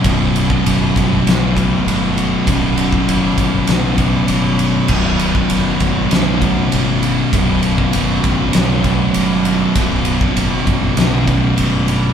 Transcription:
<<
  \new Staff \with { instrumentName = "Distorted electric guitar" } { \clef bass \time 4/4 \key c \lydian \tempo 4 = 99 <b,, fis, b,>2 <b,, fis, b,>2 | <b,, fis, b,>2 <b,, fis, b,>2 | <b,, fis, b,>2 <b,, fis, b,>2 | <b,, fis, b,>2 <b,, fis, b,>2 |
<b,, fis, b,>2 <b,, fis, b,>2 | }
  \new Staff \with { instrumentName = "Distorted electric guitar" } { \clef bass \time 4/4 \key c \lydian <b,, fis, b,>2 <b,, fis, b,>2 | <b,, fis, b,>2 <b,, fis, b,>2 | <b,, fis, b,>2 <b,, fis, b,>2 | <b,, fis, b,>2 <b,, fis, b,>2 |
<b,, fis, b,>2 <b,, fis, b,>2 | }
  \new Staff \with { instrumentName = "Fingered electric bass" } { \clef bass \time 4/4 \key c \lydian b,,,4 fis,,8 g,,8 b,,4 g,,4 | b,,,4 fis,,8 g,,8 b,,4 g,,4 | b,,,4 fis,,8 g,,8 b,,4 g,,4 | b,,,4 fis,,8 g,,8 b,,4 g,,4 |
b,,,4 fis,,8 g,,8 b,,4 g,,4 | }
  \new DrumStaff \with { instrumentName = "Drums" } \drummode { \time 4/4 <bd cymr>8 cymr16 bd16 cymr8 <bd cymr>8 <cymr sn>8 <bd cymr>8 cymr8 cymr8 | <bd cymr>8 cymr16 bd16 cymr8 <bd cymr>8 <cymr sn>8 <bd cymr>8 cymr8 cymr8 | <cymc bd>8 cymr16 bd16 cymr8 <bd cymr>8 <cymr sn>8 <bd cymr>8 cymr8 cymr8 | <bd cymr>8 cymr16 bd16 cymr8 <bd cymr>8 <cymr sn>8 <bd cymr>8 cymr8 cymr8 |
<bd cymr>8 cymr16 bd16 cymr8 <bd cymr>8 <cymr sn>8 <bd cymr>8 cymr8 cymr8 | }
>>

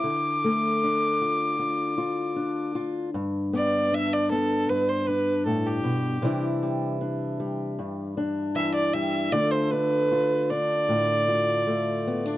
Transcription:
<<
  \new Staff \with { instrumentName = "Fiddle" } { \time 4/4 \key d \dorian \tempo 4 = 77 d'''2.~ d'''8 r8 | r8 d''8 e''16 d''16 a'8 b'16 c''16 b'8 a'16 g'8.~ | g'16 r2 r8. e''16 d''16 e''8 | d''16 c''16 b'4 d''2~ d''8 | }
  \new Staff \with { instrumentName = "Steel-string acoustic guitar" } { \time 4/4 \key d \dorian << { r4 d'8 f'8 f'8 f'8 d'8 f'8 | r8 b8 d'8 b4 d'4. | <e g d' e'>8 g8 d'8 g4 d'4 g8 | <a d' f'>8 d'8 f'8 d'4 f'4 b16 d'16 | } \\ { d8 a2.~ a8 | g,2 g,4 a,8 b,8 | c2 g,4 e4 | d2 a,4 a4 | } >> }
>>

